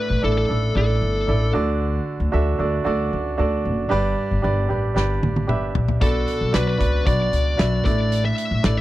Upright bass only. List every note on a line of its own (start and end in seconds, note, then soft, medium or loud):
0.10 0.21 A1 medium
0.23 0.45 A1 medium
0.50 0.71 A1 medium
0.76 0.97 A1 medium
1.02 1.23 G1 medium
1.28 1.50 A1 medium
1.55 1.98 D2 medium
2.20 2.31 D2 medium
2.34 2.55 D2 medium
2.59 2.81 D2 medium
2.86 3.08 D2 medium
3.13 3.34 C#2 medium
3.39 3.67 D2 medium
3.65 3.87 F#1 medium
3.92 4.13 G1 medium
4.31 4.42 G1 medium
4.44 4.66 G1 medium
4.70 4.92 A1 medium
4.96 5.18 G1 medium
5.23 5.44 A1 medium
5.49 5.71 G1 medium
5.75 5.97 A#1 medium
6.02 6.23 B1 medium
6.41 6.52 B1 medium
6.54 6.76 B1 medium
6.80 7.02 C#2 medium
7.07 7.28 B1 medium
7.33 7.54 C#2 medium
7.59 7.81 B1 medium
7.86 8.29 A1 medium
8.51 8.62 A1 medium
8.64 8.81 A1 medium